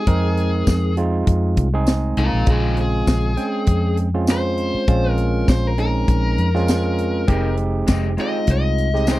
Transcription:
Already playing: G#4
0.07 F2 G#3 C4 D#4 A#4, kick, closed hi-hat
0.37 closed hi-hat
0.67 F2, kick, snare, closed hi-hat, tambourine
0.97 G#3 C4 D#4 F4, closed hi-hat
1.27 F2, kick, closed hi-hat
1.57 C2, kick, closed hi-hat
1.74 G#3 C4 D#4 G#4
1.87 snare, closed hi-hat, tambourine
2.17 C2 F4 A#4, closed hi-hat
2.33 A#1
2.46 A#1 C#3 G#3 C4 F4 G#4, kick, closed hi-hat
2.77 closed hi-hat
2.81 G#4
3.07 A#1, kick, snare, closed hi-hat, tambourine
3.37 G#3 C4 C#4 G5, closed hi-hat
3.67 F2, kick, closed hi-hat
3.97 closed hi-hat
4.14 G#3 C4 C#4 F4
4.27 snare, closed hi-hat, tambourine
4.31 C5
4.58 closed hi-hat
4.74 muted fingered electric bass stroke
4.88 A#1 G#3 C4 C#4 F4, kick, closed hi-hat
5.10 A#4
5.18 closed hi-hat
5.48 A#1 C5, kick, snare, closed hi-hat, tambourine
5.67 A#4
5.78 G#3 C4 C#4 D#4 A#4, closed hi-hat
6.08 A#1, kick, closed hi-hat
6.38 F2, closed hi-hat
6.55 G#3 C4 C#4 F4, snare
6.68 snare, closed hi-hat, tambourine
6.98 closed hi-hat
7.28 F1 G#3 C4 D#4 G4, kick, closed hi-hat
7.57 closed hi-hat
7.87 F1 G#3 C4 D#4 G4, kick, snare, closed hi-hat, tambourine
8.17 G#3 C4 D#4 F4 G4 D#5, closed hi-hat
8.47 C2, kick, closed hi-hat
8.51 D#5
8.78 closed hi-hat
8.94 G#3 C4 D#4 G4, snare
9.07 G#3 C4 D#4 G4, snare, closed hi-hat, tambourine
9.12 C5

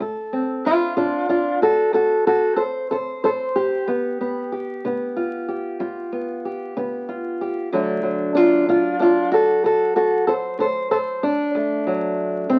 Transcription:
0.00 D2 A4
0.33 C4
0.65 D4 F4
0.97 D3 D4 F4
1.29 D4 F4
1.62 F#4 A4
1.93 D2 F#4 A4
2.27 F#4 A4
2.56 A4 C5
2.91 D3 A4 C5
3.24 A4 C5
3.56 G4
3.87 G2 B3
4.21 B3
4.52 G4
4.85 D3 B3
5.16 F4
5.48 G4
5.80 G2 F4
6.12 B3
6.45 G4
6.77 D3 B3
7.09 F4
7.41 G4
7.72 D2 D3 F#3 A3 D4
8.03 F#3
8.35 D4 F4
8.68 D3 D4 F4
9.00 D4 F4
9.32 F#4 A4
9.64 D2 F#4 A4
9.96 F#4 A4
10.27 A4 C5
10.59 D3 A4 C5
10.91 A4 C5
11.23 D4
11.55 D2 A3
11.87 F#3
12.50 D3 C4

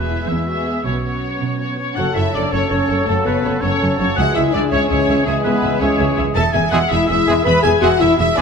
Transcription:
Already playing: E2 G#3 B3 F#4 G#4 B4 E5
0.11 E4
0.29 E2 E4 E5
0.47 B3 F#4 G#4 E5
0.68 G#4
0.84 B1 B2 F#3 B3 C#4 F#4 C#5
1.04 B3 F#4 C#5
1.41 B2
1.60 B3 F#4 C#5
1.78 C#4 C#5
1.96 F#1 F#2 C#3 F#3 F#4 A4 C#5 F#5
2.15 F#1 F#2 E4 A4 C#5 E5
2.33 F#1 F#2 D4 A4 C#5 D5
2.52 F#1 F#2 C#3 F#3 C#4 A4 C#5
2.70 F#1 F#2 C#4 A4 C#5
2.89 F#1 F#2 A4 C#5
3.05 F#1 F#2 C#3 F#3 A3 A4 C#5
3.25 F#1 F#2 B3 A4 B4 C#5
3.44 F#1 F#2 A4 C#5
3.60 F#1 F#2 C#3 F#3 C#4 A4 C#5
3.81 F#1 F#2 A4 C#5
3.99 F#1 F#2 C#4 A4 C#5
4.16 C#2 C#3 E3 G#3 F#4 G#4 E5 F#5
4.34 C#2 E4 G#4 E5
4.51 C#2 D4 G#4 D5 E5
4.70 C#2 E3 G#3 C#4 G#4 C#5 E5
4.88 C#2 C#4 G#4 C#5 E5
5.08 C#2 G#4 E5
5.24 C#2 E3 G#3 G#4 E5
5.43 C#2 B3 G#4 B4 E5
5.63 C#2 G#4 E5
5.80 C#2 E3 G#3 C#4 G#4 C#5 E5
5.98 C#2 G#4 E5
6.17 C#2 G#4 E5
6.35 E1 E2 G#4 A4 E5 A5
6.53 E1 E2 G#4 E5 G#5
6.71 E1 E2 E3 G#3 F#4 G#4 E5 F#5
6.89 E1 E2 E4 G#4 E5
7.07 E1 E2 E4 G#4 E5
7.26 E1 E2 E3 G#3 G#4 E5
7.44 E1 E2 G#4 B4 E5 B5
7.62 E1 E2 G#4 E5 G#5
7.81 E1 E2 E3 G#3 F#4 G#4 E5 F#5
8.00 E1 E2 E4 G#4 E5
8.18 E1 E2 E4 G#4 E5
8.35 E1 E2 E3 G#3 D4 G#4 D5 E5

